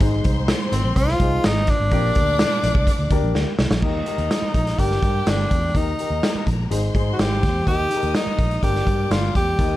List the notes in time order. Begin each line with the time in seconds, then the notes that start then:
0.00 G#1 G#2 D#4 G#4 C5 C6, kick, closed hi-hat
0.24 C2, kick, closed hi-hat
0.48 snare, closed hi-hat
0.72 G#1 C4, closed hi-hat
0.84 A#1
0.96 C2 F4, kick, closed hi-hat
1.08 snare
1.20 C2 D#4 G#4 C5, kick, closed hi-hat
1.44 G#1 D#4, snare, closed hi-hat
1.67 D4, kick, snare, closed hi-hat
1.80 G#1
1.91 A#1 A#2 A#3 C4 G4 A#4 D5 D6, kick, closed hi-hat
1.97 D4
2.15 D2, kick, closed hi-hat
2.39 snare, closed hi-hat
2.63 A#1, closed hi-hat
2.75 C2, kick
2.87 kick, closed hi-hat
2.99 D2
3.10 D2 D4 G4 A#4, kick, closed hi-hat
3.23 A#1
3.35 D2, snare
3.59 C2, snare
3.71 A#1, snare
3.81 D#2 D#3 D#4 G4 A#4 A#5, kick, crash
4.06 D#4 G4 A#4, closed hi-hat
4.18 D#2, closed hi-hat
4.31 snare, closed hi-hat
4.42 muted fingered electric bass stroke
4.54 A#1, kick, closed hi-hat
4.67 snare, closed hi-hat
4.77 G1 G2 D4 G4 A#4 G5, kick, closed hi-hat
4.91 snare
5.03 G2 D4 G4 A#4, kick, closed hi-hat
5.27 G1 D4, snare, closed hi-hat
5.51 E2, kick, closed hi-hat
5.74 D#2 D#3 D#4 G4 A#4 A#5, kick, closed hi-hat
5.99 D#4 G4 A#4, closed hi-hat
6.10 D#2
6.23 snare, closed hi-hat
6.35 muted fingered electric bass stroke
6.47 A#1, kick, closed hi-hat
6.70 G#1 G#2 D#4 G#4 C5 C6, closed hi-hat
6.95 G#2 D#4 G#4 C5, kick, closed hi-hat
7.13 F#4
7.19 G#1 G4, snare, closed hi-hat
7.43 E2, kick, snare, closed hi-hat
7.66 D#2 D#3 D#4 G4 A#4 D#5 D#6, kick, closed hi-hat
7.90 D#4 G4 G#4, closed hi-hat
7.97 A#4
8.02 D#2, closed hi-hat
8.15 D#4, snare, closed hi-hat
8.27 muted fingered electric bass stroke
8.39 A#1, kick, closed hi-hat
8.51 closed hi-hat
8.63 G1 G2 D4 G4 A#4 D5 D6, kick, closed hi-hat
8.75 snare
8.87 G2 D4 G4 A#4, kick, closed hi-hat
9.10 G1 F4, snare, closed hi-hat
9.35 E2 G4, kick, closed hi-hat
9.59 D#2 D#3 D#4 G4 A#4 D#5 D#6, kick, closed hi-hat